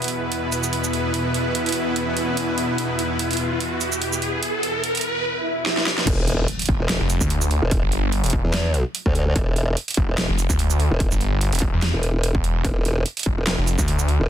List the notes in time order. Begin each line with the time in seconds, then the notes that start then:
Already playing: E2 B2 B3 E4 B4, riser
0.02 closed hi-hat
0.04 closed hi-hat
0.08 closed hi-hat
0.32 closed hi-hat
0.52 closed hi-hat, shaker
0.64 shaker
0.73 closed hi-hat
0.84 shaker
0.93 closed hi-hat
1.14 closed hi-hat
1.34 closed hi-hat
1.55 closed hi-hat
1.66 closed hi-hat
1.69 closed hi-hat
1.72 closed hi-hat
1.96 closed hi-hat
2.17 closed hi-hat
2.37 closed hi-hat
2.58 closed hi-hat
2.78 closed hi-hat
2.99 closed hi-hat
3.19 closed hi-hat
3.31 closed hi-hat
3.33 closed hi-hat
3.37 closed hi-hat
3.60 closed hi-hat
3.81 closed hi-hat, shaker
3.92 shaker
4.02 closed hi-hat
4.13 shaker
4.22 closed hi-hat
4.43 closed hi-hat
4.63 closed hi-hat
4.84 closed hi-hat
4.95 closed hi-hat
4.97 closed hi-hat
5.01 closed hi-hat
5.25 swell
5.66 snare
5.77 snare
5.86 snare
5.98 snare
6.07 E1, kick, closed hi-hat, crash, impact
6.28 closed hi-hat
6.48 closed hi-hat
6.59 closed hi-hat
6.62 closed hi-hat
6.66 F1, kick, closed hi-hat
6.80 E1
6.89 snare, closed hi-hat
7.00 F1
7.10 closed hi-hat, shaker
7.21 D2, kick, shaker
7.30 closed hi-hat
7.42 shaker
7.51 closed hi-hat
7.62 E1
7.71 kick, closed hi-hat
7.83 G1
7.92 closed hi-hat
8.12 closed hi-hat
8.24 E1, closed hi-hat
8.26 closed hi-hat
8.30 kick, closed hi-hat
8.44 E2
8.54 snare, closed hi-hat
8.74 closed hi-hat
8.95 closed hi-hat
9.06 D2, kick
9.15 closed hi-hat
9.36 E1, kick, closed hi-hat
9.56 closed hi-hat
9.77 closed hi-hat
9.88 closed hi-hat
9.91 closed hi-hat
9.94 F1, kick, closed hi-hat
10.09 E1
10.18 snare, closed hi-hat
10.29 F1
10.39 closed hi-hat, shaker
10.50 D2, kick, shaker
10.59 closed hi-hat
10.70 shaker
10.80 closed hi-hat
10.91 E1
11.00 kick, closed hi-hat
11.11 G1, shaker
11.21 closed hi-hat
11.41 closed hi-hat
11.53 E1, closed hi-hat
11.55 closed hi-hat
11.59 kick, closed hi-hat
11.73 E2
11.82 snare, closed hi-hat
11.94 E1
12.03 closed hi-hat
12.23 closed hi-hat
12.35 E1, kick
12.44 closed hi-hat
12.65 E1, kick, closed hi-hat
12.85 closed hi-hat
13.06 closed hi-hat
13.17 closed hi-hat
13.19 closed hi-hat
13.23 F1, kick, closed hi-hat
13.37 E1
13.47 snare, clap, closed hi-hat
13.58 F1
13.67 closed hi-hat, shaker
13.79 D2, kick, shaker
13.88 closed hi-hat
13.99 shaker
14.08 closed hi-hat
14.20 E1